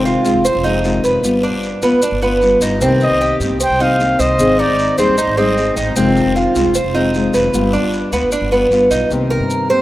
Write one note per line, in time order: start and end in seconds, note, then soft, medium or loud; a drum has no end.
0.00 0.14 F1 medium
0.00 0.24 C3 medium
0.00 0.24 D#3 medium
0.00 0.24 G#3 medium
0.00 0.23 C4 medium
0.00 0.24 F4 medium
0.05 0.44 F4 medium
0.05 short guiro medium
0.05 maracas soft
0.24 0.34 C2 medium
0.24 0.43 D#3 medium
0.24 0.43 G#3 medium
0.24 0.44 C4 medium
0.24 0.44 F4 medium
0.24 short guiro medium
0.24 maracas medium
0.35 0.54 F1 medium
0.44 0.64 C5 medium
0.44 muted nylon-string guitar stroke medium
0.44 long guiro medium
0.44 maracas medium
0.55 1.02 F1 medium
0.64 0.82 D#3 medium
0.64 0.83 G#3 medium
0.64 0.84 C4 medium
0.64 1.03 D#4 medium
0.64 0.83 F4 medium
0.64 maracas soft
0.83 1.23 D#3 medium
0.83 1.23 G#3 medium
0.83 1.23 C4 medium
0.83 1.23 F4 medium
0.83 short guiro medium
0.83 maracas soft
1.04 1.23 F1 medium
1.04 1.42 B4 medium
1.04 short guiro medium
1.04 maracas medium
1.23 1.52 G1 medium
1.23 1.85 G3 medium
1.23 1.82 B3 medium
1.23 1.81 F4 medium
1.23 long guiro medium
1.23 maracas medium
1.43 1.82 D4 medium
1.43 maracas soft
1.53 1.72 G1 medium
1.63 short guiro medium
1.63 maracas soft
1.82 1.92 D2 medium
1.82 2.02 B3 medium
1.82 2.02 F4 medium
1.82 short guiro medium
1.82 maracas medium
1.92 2.11 G1 medium
2.02 2.22 D4 medium
2.02 muted nylon-string guitar stroke medium
2.02 long guiro medium
2.02 maracas medium
2.12 2.59 G1 medium
2.22 2.61 B3 medium
2.22 2.41 B3 medium
2.22 2.41 F4 medium
2.22 maracas soft
2.41 2.80 G3 medium
2.41 2.81 B3 soft
2.41 2.81 F4 medium
2.41 short guiro medium
2.41 maracas soft
2.61 2.80 G1 loud
2.61 2.81 D#4 medium
2.61 short guiro medium
2.61 maracas medium
2.81 3.09 C2 loud
2.81 3.40 C3 medium
2.81 3.40 D#3 medium
2.81 3.40 A#3 medium
2.81 3.20 C4 medium
2.81 3.40 C4 medium
2.81 3.40 G4 medium
2.81 long guiro medium
2.81 maracas medium
3.01 3.39 D#5 loud
3.01 maracas soft
3.10 3.30 C2 medium
3.21 3.59 G4 medium
3.21 short guiro medium
3.21 maracas soft
3.40 3.50 G2 medium
3.40 3.59 D#3 medium
3.40 3.59 A#3 medium
3.40 3.60 C4 medium
3.40 3.59 G4 medium
3.40 short guiro medium
3.40 maracas medium
3.50 3.69 C2 medium
3.60 3.80 C5 medium
3.60 3.83 G5 loud
3.60 muted nylon-string guitar stroke medium
3.60 long guiro medium
3.60 maracas medium
3.70 4.17 C2 medium
3.79 3.98 D#3 medium
3.79 3.98 A#3 medium
3.79 3.99 C4 medium
3.79 4.19 D#4 medium
3.79 3.99 G4 medium
3.79 4.22 F5 medium
3.79 maracas soft
3.99 4.37 D#3 soft
3.99 4.38 A#3 medium
3.99 4.38 C4 medium
3.99 4.39 G4 medium
3.99 short guiro medium
3.99 maracas soft
4.19 4.38 C2 loud
4.19 4.58 C5 medium
4.19 4.61 D#5 medium
4.19 short guiro medium
4.19 maracas medium
4.39 4.67 G#1 loud
4.39 4.97 D#3 medium
4.39 4.99 C4 medium
4.39 4.98 D#4 medium
4.39 4.98 G#4 medium
4.39 long guiro medium
4.39 maracas medium
4.59 4.97 D#4 medium
4.59 4.98 D5 loud
4.59 maracas soft
4.69 4.87 G#1 medium
4.79 short guiro medium
4.79 maracas soft
4.98 5.07 D#2 medium
4.98 5.17 G3 medium
4.98 5.17 C4 medium
4.98 5.17 D#4 medium
4.98 5.17 G#4 medium
4.98 5.40 C5 medium
4.98 short guiro medium
4.98 maracas medium
5.08 5.27 G#1 medium
5.18 5.37 D#4 medium
5.18 muted nylon-string guitar stroke medium
5.18 long guiro medium
5.18 maracas medium
5.27 5.74 G#1 loud
5.37 5.57 G3 soft
5.37 5.76 C4 medium
5.37 5.56 C4 medium
5.37 5.57 D#4 medium
5.37 5.56 G#4 medium
5.37 5.77 D#5 medium
5.37 maracas soft
5.57 5.96 C4 medium
5.57 5.96 D#4 medium
5.57 5.96 G#4 medium
5.57 short guiro medium
5.57 maracas soft
5.76 5.95 G#1 loud
5.76 5.96 D#4 medium
5.76 short guiro medium
5.76 maracas medium
5.96 6.25 F1 loud
5.96 6.55 C3 medium
5.96 6.55 D#3 medium
5.96 6.55 G#3 medium
5.96 6.35 C4 medium
5.96 6.55 C4 medium
5.96 6.55 F4 medium
5.96 long guiro medium
5.96 maracas medium
6.16 maracas soft
6.26 6.45 F1 medium
6.36 6.74 F4 medium
6.36 short guiro medium
6.36 maracas soft
6.55 6.64 C2 medium
6.55 6.74 D#3 medium
6.55 6.74 G#3 medium
6.55 6.75 C4 medium
6.55 6.74 F4 medium
6.55 short guiro medium
6.55 maracas medium
6.65 6.84 F1 medium
6.74 6.94 C5 medium
6.74 muted nylon-string guitar stroke medium
6.74 long guiro medium
6.74 maracas medium
6.84 7.31 F1 medium
6.94 7.13 D#3 medium
6.94 7.14 G#3 medium
6.94 7.14 C4 medium
6.94 7.33 D#4 medium
6.94 7.13 F4 medium
6.94 maracas soft
7.14 7.53 D#3 soft
7.14 7.52 G#3 medium
7.14 7.53 C4 medium
7.14 7.53 F4 medium
7.14 short guiro medium
7.14 maracas soft
7.34 7.53 F1 loud
7.34 7.72 B4 medium
7.34 short guiro medium
7.34 maracas medium
7.53 7.82 G1 loud
7.53 8.11 G3 medium
7.53 8.12 B3 medium
7.53 8.11 F4 medium
7.53 long guiro medium
7.53 maracas medium
7.73 8.11 D4 medium
7.73 maracas soft
7.83 8.02 G1 medium
7.93 short guiro medium
7.93 maracas soft
8.12 8.21 D2 medium
8.12 8.32 B3 medium
8.12 8.31 B3 medium
8.12 8.31 F4 medium
8.12 short guiro medium
8.12 maracas medium
8.22 8.41 G1 medium
8.32 8.51 D4 medium
8.32 muted nylon-string guitar stroke medium
8.32 long guiro medium
8.32 maracas medium
8.42 8.70 G1 loud
8.52 8.90 B3 medium
8.52 8.71 B3 soft
8.52 8.71 F4 medium
8.52 maracas soft
8.71 8.89 G1 medium
8.71 9.10 G3 medium
8.71 9.10 B3 medium
8.71 9.11 F4 medium
8.71 short guiro medium
8.71 maracas soft
8.91 9.09 B1 medium
8.91 9.10 D#4 medium
8.91 short guiro medium
8.91 maracas medium
9.10 9.39 C2 medium
9.10 9.69 C3 medium
9.10 9.69 D#3 medium
9.10 9.69 A#3 medium
9.10 9.70 C4 medium
9.10 9.69 G4 medium
9.10 maracas medium
9.30 9.67 A#4 medium
9.30 maracas soft
9.40 9.78 G2 medium
9.50 maracas medium
9.69 9.82 D#3 medium
9.69 9.82 A#3 medium
9.69 9.82 C4 medium
9.69 9.82 G4 medium
9.69 9.82 C5 medium
9.69 maracas soft